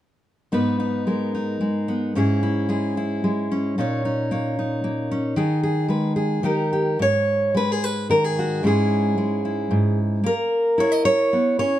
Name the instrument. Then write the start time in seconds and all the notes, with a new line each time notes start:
steel-string acoustic guitar
0.52 G#2 B3 D#4 B4
0.80 D#4
1.07 G#3 A#4
1.35 D#4
1.61 G#3
1.88 B3
2.15 G#2 C#4 E4 G#4
2.43 E4
2.69 G#3 G#4
2.97 E4
3.24 G#3
3.52 C#4
3.78 A#2 C#4 D#4 C#5
4.05 D#4
4.31 A#3 C#5
4.59 D#4
4.84 A#3
5.11 C#4
5.36 D#3 D#4 G#4
5.63 G#4
5.88 G#3 B4
6.16 G#4
6.43 D#3 D#4 G4 A#4
6.73 G4
6.99 G#2 C#5
7.55 G#3 B4
7.72 G#4
7.84 B4
8.09 D#3 A#4
8.24 G#4
8.39 F#4
8.63 G#2 G#3 C#4 E4 G#4
9.18 G#3
9.45 E4
9.71 G#2
10.24 A#3 A#4
10.78 E4 C#5
10.92 D#5
11.05 C#5
11.33 B3
11.59 C#4 C#5